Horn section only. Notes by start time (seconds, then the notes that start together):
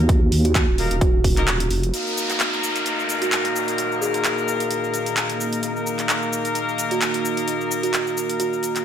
0.78 A#3 D#4 A#4
1.37 A#3 D#4 A#4
1.94 A#3 D#4 A#4
5.63 A#3 D#4 A#4